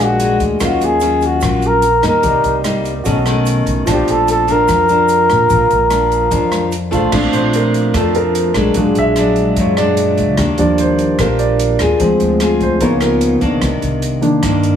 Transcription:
Already playing: A#1 A#2 G#3 D4 F#4 G#4 D5 F5
0.04 F#4
0.20 G#3 D4 F#4, closed hi-hat
0.40 D2, kick, closed hi-hat
0.60 D#2 D#3 F#3 C#4 F4 A#4 C#5, kick, cross-stick, closed hi-hat, shaker
0.65 F#4 F5
0.80 D#2, closed hi-hat, shaker
0.85 G#4
1.00 F#3 C#4 F4, closed hi-hat, shaker
1.21 closed hi-hat, shaker
1.26 F#4
1.41 A#1 A#2 F#3 C#4 F4, kick, cross-stick, closed hi-hat, shaker
1.62 closed hi-hat, shaker
1.67 A#4
1.82 closed hi-hat, shaker
2.02 D#2 G3 A#3 D#4, cross-stick, closed hi-hat, shaker
2.07 A#4
2.23 C2 C3 G4 A#4 D5, kick, closed hi-hat, shaker
2.29 D#5
2.44 C2, closed hi-hat, shaker
2.64 G3 A#3 D#4, cross-stick, closed hi-hat, shaker
2.85 closed hi-hat, shaker
3.04 B1 B2 D#3 A3 C#4 F#4 A4, kick, closed hi-hat, shaker
3.08 C#5 D#5
3.26 D#3 A3 C#4, cross-stick, closed hi-hat, shaker
3.46 closed hi-hat, shaker
3.66 B1, closed hi-hat, shaker
3.85 A#1 A#2 F3 A3 D4 F4 A5, kick, cross-stick, closed hi-hat, shaker
3.89 G4 C5 D5
4.07 A#1 A4, closed hi-hat, shaker
4.28 A4, closed hi-hat, shaker
4.48 F3 D4 A#4, closed hi-hat, shaker
4.68 F2, kick, cross-stick, closed hi-hat, shaker
4.88 F3 D4, closed hi-hat, shaker
5.08 closed hi-hat, shaker
5.30 A#1, cross-stick, closed hi-hat, shaker
5.50 A#1 A#2, kick, closed hi-hat, shaker
5.70 A#1, closed hi-hat, shaker
5.90 F3 D4, cross-stick, closed hi-hat, shaker
6.12 closed hi-hat, shaker
6.31 F2 F3 D4, kick, closed hi-hat, shaker
6.52 cross-stick, closed hi-hat, shaker
6.72 closed hi-hat, shaker
6.91 A#1 F3 A3 D4 F4 A4 C5 F5, kick, closed hi-hat, shaker
7.12 A#1 A#2 A3 C4 D4, kick, cross-stick, crash
7.32 A#1 C5, closed hi-hat
7.53 A#4, closed hi-hat
7.74 closed hi-hat
7.94 F2 F3 A3 D4 A4, kick, cross-stick, closed hi-hat
8.15 A#4, closed hi-hat
8.35 closed hi-hat
8.54 A#1 F#3 G#3 D4, cross-stick, closed hi-hat
8.74 A#1 A#2 F#3 G#3 D4, kick, closed hi-hat
8.95 A#1 E5, closed hi-hat
9.16 F#3 G#3 D4, cross-stick, closed hi-hat
9.20 D5
9.36 closed hi-hat
9.56 F#2 A#2 C#5, kick, closed hi-hat
9.77 F#3 G#3 D4 D5, cross-stick, closed hi-hat
9.97 closed hi-hat
10.18 C#2, closed hi-hat
10.37 D#2 D#3 A#3 D4 G4, kick, cross-stick, closed hi-hat
10.58 D#2 F3 G3 D4 D5, closed hi-hat
10.78 C5, closed hi-hat
10.99 closed hi-hat
11.18 A#1 A#2 A#3 D4 G4 A#4, kick, cross-stick, closed hi-hat
11.39 D5, closed hi-hat
11.59 closed hi-hat
11.79 D#2 C4 F4 G#4, cross-stick, closed hi-hat
11.99 D2 D3 F3 G#3 C4, kick, closed hi-hat
12.20 D2, closed hi-hat
12.40 C4 F4 G#4, cross-stick, closed hi-hat
12.61 C5, kick, closed hi-hat
12.81 C#2 C#3 F3 A#3 B3 D#4 F4 A#4 C#5, kick, closed hi-hat
13.00 B3 F4 A#4, cross-stick, closed hi-hat
13.21 closed hi-hat
13.41 C#2 D#3 A#3 D4, kick, closed hi-hat
13.61 C2 C3, kick, cross-stick, closed hi-hat
13.82 C2, closed hi-hat
14.02 closed hi-hat
14.21 D#3 A#3 D4, closed hi-hat
14.42 G2 D#3 A#3 D4, kick, cross-stick, closed hi-hat
14.63 closed hi-hat

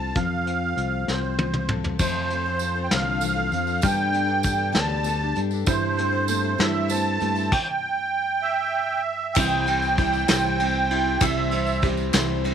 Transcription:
Already playing: C2 F3 C4 F4 A4 A5
0.15 F2 F3 F5, kick, closed hi-hat
0.46 C4, closed hi-hat
0.77 C2 F4, closed hi-hat
1.07 C2 C4 C5, snare
1.39 F4, high tom
1.54 mid tom
1.69 A4, mid tom
1.84 floor tom
1.99 F2 F3 A3 C4 F4 A4 C5, kick, crash, tambourine
2.30 A3 C4 F4 A4, closed hi-hat
2.46 C4 F4 A4
2.59 A4, closed hi-hat, tambourine
2.75 C4 F4 A4
2.84 G5
2.91 C2 D3 F3 A3 C4 F4 A4 F5, snare, closed hi-hat
3.21 E3 A3 C4 F4 A4, closed hi-hat, tambourine
3.36 C4 F4 A4
3.52 F2 F3, closed hi-hat, tambourine
3.67 C4 F4 A4, tambourine
3.81 G2 G3 B3 D4 G4 A4 G5, kick, closed hi-hat, tambourine
3.85 D4 A4
4.12 B3 D4 G4 A4, closed hi-hat
4.27 D4 G4 A4
4.43 A4, kick, closed hi-hat, tambourine
4.58 D4 G4 A4
4.72 D2 G3 B3 D4 G4 A4 A5, snare, closed hi-hat
5.03 B3 D4 G4 A4, closed hi-hat, tambourine
5.19 D4 G4 A4
5.36 G2 D4, closed hi-hat, tambourine
5.51 D4 G4 A4, tambourine
5.66 G1 G2 G3 A3 C4 E4 G4 A4 C5, kick, closed hi-hat, tambourine
5.97 A3 C4 E4 A4, closed hi-hat
6.12 C4 E4 A4
6.28 A3 A4, closed hi-hat, tambourine
6.43 C4 E4 A4
6.58 G2 G3 A3 C4 E4 A4 E5, snare, closed hi-hat
6.88 A3 C4 E4 A4 A5, closed hi-hat, tambourine
7.04 C4 E4 A4
7.20 G2 A3 E4, closed hi-hat, tambourine
7.35 C4 E4 A4, tambourine
7.51 G5, kick, crash
8.42 E5
9.35 C2 C3 E3 G3 C4 E4 C5 G5, kick, clap, crash, tambourine
9.66 G3 C4 E4 C5, ride, tambourine
9.82 tambourine
9.97 G3 C4 E4 C5, kick, ride, tambourine
10.13 clap, tambourine
10.28 C2 C3 E3 G3 C4 E4 C5 G5, snare, clap, ride, tambourine
10.60 G3 C4 E4 C5, clap, ride
10.91 G3 C4 E4 C5, ride
11.21 C2 C3 E3 G3 C4 E4 C5 E5, kick, clap, ride, tambourine
11.51 G3 C4 E4 C5, ride, tambourine
11.66 tambourine
11.82 G3 C4 E4 G4 C5, kick, ride, tambourine
11.97 clap, tambourine
12.13 C2 C3 E3 G3 C4 E4 C5, snare, clap, ride, tambourine
12.44 G3 C4 E4 C5, clap, ride

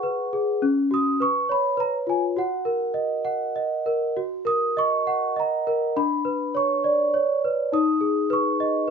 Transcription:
Already playing: G#4 F#5 C#6
0.03 B4
0.33 G#4
0.62 C#4
0.91 F#4 D#6
1.20 B4 C#6
1.49 C#5 B5
1.77 B4 A#5
2.07 F4 G#5
2.37 F#4 F#5
2.65 A#4
2.94 D#5
3.25 F#5
3.56 D#5
3.86 A#4
4.17 F#4
4.45 A#4 D#6
4.77 D#5 C#6
5.07 F#5
5.36 D#5 A#5
5.67 A#4
5.96 D4 B5
6.25 B4
6.55 C#5 C#6
6.84 D5
7.14 C#5
7.44 B4
7.72 D#4 D#6
8.01 G#4
8.30 B4 C#6
8.60 D#5

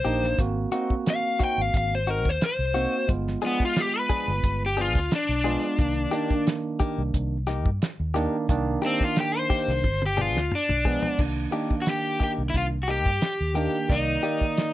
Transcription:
Already playing: C5
0.05 A#1 A#3 D4 D#4 G4, closed hi-hat
0.23 snare
0.38 G#1 A#3 C4 F#4, kick, closed hi-hat
0.72 A#3 C4 D#4 F#4, closed hi-hat
0.90 kick
1.06 F5, snare, closed hi-hat
1.39 C4 D#4 F#4, kick, closed hi-hat
1.44 G5
1.58 G#1 F5
1.74 G#1 F5, kick, closed hi-hat
1.95 C5
2.07 C4 D#4 F#4 A#4, closed hi-hat
2.25 D#2 C5, kick
2.41 snare, closed hi-hat
2.45 C5
2.59 C2
2.74 A#3 C4 D#4 F#4, closed hi-hat
3.08 G1 G#3 B3 F4, kick, closed hi-hat
3.28 snare
3.42 F3 G#3 B3 D4 F4 G#4, closed hi-hat
3.46 B3
3.60 kick
3.65 F4
3.76 snare, closed hi-hat
3.80 G4
3.99 B4
4.09 F3 B3 D4 G#4, kick, closed hi-hat
4.28 G1
4.44 G1, kick, closed hi-hat
4.66 G4
4.77 F3 B3 D4 G#4, closed hi-hat
4.81 F4
4.95 D2, kick
5.11 D4, snare, closed hi-hat
5.29 B1
5.44 F3 G#3 B3 D4 F4 G#4, closed hi-hat
5.78 C2 D#3 A#3 D4, kick, closed hi-hat
6.11 D#3 A#3 D4 D#4 G4, closed hi-hat
6.31 kick
6.47 snare, closed hi-hat
6.80 A#3 D#4 G4, kick, closed hi-hat
6.98 C2
7.14 C2, kick, closed hi-hat
7.47 A#3 D#4 G4, snare, closed hi-hat
7.66 G2, kick
7.82 snare, closed hi-hat
8.00 D#2
8.14 D#3 A#3 D4 D#4 G4, closed hi-hat
8.49 C2 D#3 A#3 D4, kick, closed hi-hat
8.82 D#3 A#3 D4 D#4 G4, closed hi-hat
8.86 C4
9.01 F4, kick
9.16 snare, closed hi-hat
9.20 G4
9.38 C5
9.50 A#3 D#4 G4, kick, open hi-hat
9.68 C2, snare
9.84 G1, kick, high tom
10.02 high tom
10.06 G4
10.17 F3 B3 D4 G#4, mid tom
10.21 F4
10.36 D2, snare
10.52 D4, mid tom
10.69 B1, mid tom
10.85 F3 G#3 B3 D4 G#4, kick
11.03 floor tom
11.18 C2 D#3 A#3 D4, kick, crash
11.51 D#3 A#3 D4 D#4 G4, closed hi-hat
11.71 kick
11.82 F#4
11.86 G4, snare, closed hi-hat
12.20 A#3 D#4 G4, kick, closed hi-hat
12.38 C2
12.50 E4
12.54 C2 F4, kick, closed hi-hat
12.83 F#4
12.88 A#3 D#4 G4, closed hi-hat
13.06 G2, kick
13.21 snare, closed hi-hat
13.41 D#2
13.54 D#3 A#3 D4 D#4 G4, closed hi-hat
13.88 C2 D#3 A#3 D#4 D5, kick, closed hi-hat
14.22 D#3 A#3 D#4 G4 D5, closed hi-hat
14.41 kick
14.57 snare, closed hi-hat

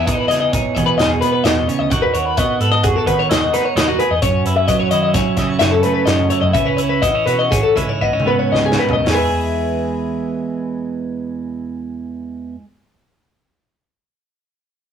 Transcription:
Already playing: E2 G#4
0.06 E3 D#4 D#5, kick, closed hi-hat
0.17 B4
0.28 C#3 G#4 D#5, snare, closed hi-hat
0.40 D#5
0.52 B1 D#4 C#5, kick, closed hi-hat
0.75 B2 E3 G#4 D#5, kick, closed hi-hat
0.86 B4
0.98 E2 D#4 D#5, snare, closed hi-hat
1.09 G#4
1.21 B3 B4, closed hi-hat
1.32 B4
1.43 E2 B2 D#5, snare, closed hi-hat
1.68 C#3 C#5, closed hi-hat
1.79 D2 D#5
1.90 D#2 D#3 F#4 F#5, kick, closed hi-hat
2.02 B4
2.14 D#2 F#4 C#5, closed hi-hat
2.25 B4
2.37 B3 F#4 D#5, kick, closed hi-hat
2.60 G#2 A4 B4, closed hi-hat
2.72 D#5
2.83 F#2 F#4 G#4, kick, closed hi-hat
2.96 A4
3.06 D#3 F#4 B4, kick, closed hi-hat
3.19 C#5
3.29 D#2 E4 D#5, snare, closed hi-hat
3.40 F#4
3.53 D#4 B4, snare, closed hi-hat
3.65 C#5
3.75 D#2 D#3 E4 D#5, snare, closed hi-hat
3.88 F#4
3.99 G#4 B4, closed hi-hat
4.10 E2 D#5
4.22 F#2 C#4 C#5, kick, closed hi-hat
4.45 F#2 E4 B4, closed hi-hat
4.57 E5
4.68 F#3 B3 D#5, kick, closed hi-hat
4.79 C#4 C#5
4.91 D#3 E4 D#5, closed hi-hat
5.03 D#5
5.14 C#2 C#4 C#5, kick, snare, closed hi-hat
5.37 C#3 F#3 E4 D#5, kick, snare, closed hi-hat
5.48 C#5
5.59 F#2 C#4 E5, snare, closed hi-hat
5.71 A4
5.83 A3 B4, closed hi-hat
5.94 B4
6.06 F#2 C#4 D#5, snare, closed hi-hat
6.30 E4 C#5, closed hi-hat
6.41 F#2 D#5
6.53 C#2 C#3 B3 E5, kick, closed hi-hat
6.65 C#4 B4
6.77 C#2 E4 C#5, closed hi-hat
6.89 B4
7.02 E3 B3 D#5, kick, closed hi-hat
7.15 C#4
7.26 B2 F#4 B4, closed hi-hat
7.39 D#5
7.51 G#1 C#4 G#4, kick, closed hi-hat
7.63 A4
7.76 G#2 C#3 E4 B4, kick, closed hi-hat
7.89 C#5
8.01 C#2 B3 D#5, kick
8.13 C#4
8.20 high tom
8.26 B3 B4
8.39 C#5
8.52 C#2 C#3 D#5, snare
8.66 G#4
8.72 snare
8.79 D#3 B4
8.89 floor tom
8.93 C#2 D#5
9.05 E2, snare, open hi-hat
9.09 E3 G#4
9.14 G#3 B4
9.18 E5
9.24 G#4

